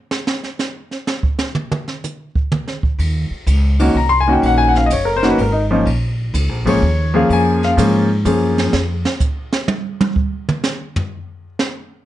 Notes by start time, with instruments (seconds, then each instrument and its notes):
0.11 snare
0.27 snare
0.44 snare
0.59 snare, hi-hat pedal
0.91 snare
1.07 snare
1.23 kick
1.39 snare
1.55 mid tom
1.72 mid tom
1.88 snare
2.04 hi-hat pedal, mid tom
2.35 kick
2.52 mid tom
2.68 snare
2.83 kick
2.99 upright bass D#2, kick, ride
3.31 muted upright bass stroke
3.47 upright bass C#2, kick, hi-hat pedal, ride
3.79 grand piano D#3 A#3 C#4 F#4, ride
3.95 upright bass C2, grand piano A#5, kick
4.09 grand piano C6
4.21 grand piano G#5
4.28 grand piano D#3 A#3 C#4 F#4
4.33 grand piano G5
4.42 upright bass A#1, grand piano F#5, kick, ride
4.58 grand piano G#5
4.69 grand piano F#5
4.75 grand piano F5, snare
4.86 upright bass F#1, grand piano D#5, hi-hat pedal, ride
4.90 grand piano C#5, kick
5.05 grand piano A#4
5.17 grand piano C5
5.23 grand piano D#3 A#3 C#4 F#4, snare, ride
5.29 grand piano B4
5.38 upright bass G#1, grand piano A#4, kick, ride
5.52 grand piano D#4
5.71 grand piano F3 A#3 C#4 D#4
5.86 upright bass A#1, kick, ride
6.34 upright bass C#2, kick, hi-hat pedal, ride
6.49 upright bass A#1
6.65 upright bass G#1, grand piano F3 A#3 C#4 G#4 C#5, ride
6.82 upright bass D#2, kick
7.14 grand piano F3 A#3 C#4 G#4 F5
7.29 upright bass F2, grand piano G#5, kick, ride
7.63 grand piano F5, snare
7.77 upright bass G#2, grand piano F3 A#3 C#4 G#4, kick, hi-hat pedal, ride
8.25 upright bass F#2, grand piano F3 A#3 C#4 G#4, kick, hi-hat pedal, ride
8.58 snare, ride
8.73 upright bass F2, snare
9.05 snare
9.20 kick, hi-hat pedal
9.53 snare
9.68 high tom
10.01 high tom
10.16 kick
10.49 mid tom
10.64 snare, hi-hat pedal
10.96 floor tom
11.59 snare